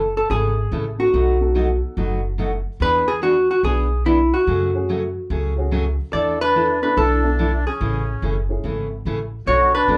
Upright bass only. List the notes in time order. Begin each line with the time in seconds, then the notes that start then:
Already playing: F#1
0.30 G#1
0.72 A1
1.14 B1
1.97 F#1
2.80 E2
3.63 B1
4.47 F#2
5.30 C#2
6.13 E2
6.97 B1
7.81 A1
8.22 F#1
8.64 G#1
9.05 A1
9.47 B1
9.88 B1